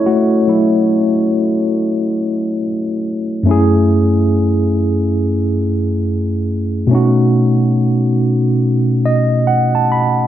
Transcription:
Already playing: E4 C#5 D#5
0.06 A3 F#4
0.48 F#3 A3 E4
3.43 F#2 A3 C#4
3.49 E4 G#4
6.87 B2 A3
6.91 C#4 D#4 F#4
9.06 D#5
9.47 F#5
9.75 A5
9.92 B5

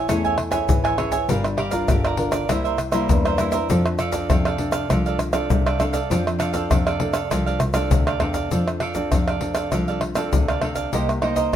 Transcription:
0.08 E2 A3 C#4 E4 G#4 A4 C#5 E5 G#5, pandeiro, tamborim, shaker, surdo
0.24 C#5 E5 G#5, pandeiro, shaker, surdo
0.37 muted cavaquinho stroke, pandeiro, tamborim
0.51 C#4 E4 G#4 C#5 E5 G#5, pandeiro, tamborim, shaker, surdo
0.69 G#1 E3, pandeiro, shaker, surdo
0.84 C#5 E5 G#5, pandeiro, tamborim, shaker
0.97 C#4 E4 G#4 A4 C#5 E5 G#5, pandeiro, tamborim
1.11 C#5 E5 G#5, pandeiro, shaker, surdo
1.29 G1 G3 D4 F4 G4 A#4 D5 F5, pandeiro, shaker, surdo
1.44 muted cavaquinho stroke, pandeiro, tamborim, shaker
1.57 G4 A#4 D5 F5, pandeiro, tamborim
1.71 D4 F4 A#4 D5 F5, pandeiro, shaker, surdo
1.88 G1 D3 G4 A#4 D5 F5, pandeiro, tamborim, shaker, surdo
2.04 A#4 D5 F5, pandeiro, tamborim, shaker
2.17 D4 F4 A#4, pandeiro
2.31 A#4 D5 F5, pandeiro, tamborim, shaker
2.48 C2 C3 G3 A#3 E4 A#4 C5 E5, pandeiro, tamborim, shaker, surdo
2.64 A#4 C5 E5, pandeiro, shaker, surdo
2.78 muted cavaquinho stroke, pandeiro, tamborim, shaker
2.92 G3 A#3 E4 A#4 C5 E5, pandeiro, tamborim, shaker, surdo
3.09 E2 G2, pandeiro, shaker, surdo
3.25 A#4 C5 E5, pandeiro, tamborim, shaker
3.38 G3 A#3 E4 A#4 C5 E5, pandeiro, tamborim, shaker, surdo
3.52 A#4 C5 E5, pandeiro, shaker, surdo
3.69 F2 F3 C4 D4 A4 D5 F5, pandeiro, shaker, surdo
3.85 muted cavaquinho stroke, pandeiro, tamborim, shaker
3.98 D4 A4 D5 F5, pandeiro, tamborim, shaker
4.12 C4 D4 A4 D5 F5, pandeiro, shaker, surdo
4.30 F2 C3 D4 A4 D5 F5, pandeiro, tamborim, shaker, surdo
4.45 A4 D5 F5, pandeiro, tamborim, shaker
4.58 C4 D4 A4, pandeiro
4.72 A4 D5 F5, pandeiro, tamborim, shaker
4.90 C2 F3 C4 D4 A4 D5 F5, pandeiro, tamborim, shaker, surdo
5.06 A4 D5 F5, pandeiro, shaker, surdo
5.19 muted cavaquinho stroke, pandeiro, tamborim, shaker
5.33 C4 D4 A4 D5 F5, pandeiro, tamborim, shaker, surdo
5.50 C2 C3, pandeiro, shaker, surdo
5.66 A4 D5 F5, pandeiro, tamborim, shaker
5.79 C4 D4 A4 D5 F5, pandeiro, tamborim, shaker, surdo
5.93 A4 D5 F5, pandeiro, shaker, surdo
6.10 F2 F3 C4 D4 A4 D5 F5, pandeiro, shaker, surdo
6.27 muted cavaquinho stroke, pandeiro, tamborim, shaker
6.39 D4 A4 D5 F5, pandeiro, tamborim, shaker
6.53 C4 D4 A4 D5 F5, pandeiro, shaker, surdo
6.70 F2 C3 D4 A4 D5 F5, pandeiro, tamborim, shaker, surdo
6.86 A4 D5 F5, pandeiro, tamborim, shaker
7.00 C4 D4 A4, pandeiro
7.13 A4 D5 F5, pandeiro, tamborim, shaker
7.30 C2 F3 C4 D4 A4 D5 F5, pandeiro, tamborim, shaker, surdo
7.46 A4 D5 F5, pandeiro, shaker, surdo
7.60 C2, muted cavaquinho stroke, pandeiro, tamborim, shaker
7.74 C4 D4 A4 D5 F5, pandeiro, tamborim, shaker, surdo
7.91 D2 C3, pandeiro, shaker, surdo
8.07 A4 D5 F5, pandeiro, tamborim, shaker
8.20 E2 C4 D4 A4 D5 F5, pandeiro, tamborim, surdo
8.34 A4 D5 F5, pandeiro, shaker, surdo
8.51 F2 F3 C4 D4 A4 D5 F5, pandeiro, shaker, surdo
8.68 muted cavaquinho stroke, pandeiro, tamborim, shaker
8.80 D4 A4 D5 F5, pandeiro, tamborim
8.95 C4 D4 A4 D5 F5, pandeiro, shaker, surdo
9.12 F2 C3 D4 A4 D5 F5, pandeiro, tamborim, shaker, surdo
9.28 A4 D5 F5, pandeiro, tamborim, shaker
9.41 C4 D4 A4, pandeiro
9.55 A4 D5 F5, pandeiro, tamborim, shaker
9.72 C2 F3 C4 D4 A4 D5 F5, pandeiro, tamborim, shaker, surdo
9.88 A4 D5 F5, pandeiro, shaker, surdo
10.01 muted cavaquinho stroke, pandeiro, tamborim
10.15 C4 D4 A4 D5 F5, pandeiro, tamborim, shaker, surdo
10.33 D2 C3, pandeiro, shaker, surdo
10.48 A4 D5 F5, pandeiro, tamborim, shaker
10.61 C4 D4 A4 D5 F5, pandeiro, tamborim, surdo
10.75 A4 D5 F5, pandeiro, shaker, surdo
10.93 C2 C3 A#3 D#4 G4 A#4 C5 D#5, pandeiro, shaker, surdo
11.09 muted cavaquinho stroke, pandeiro, tamborim, shaker
11.22 A#3 D#4 G4 A#4 C5 D#5, pandeiro, tamborim
11.36 A#4 C5 D#5, pandeiro, shaker, surdo
11.53 D#4

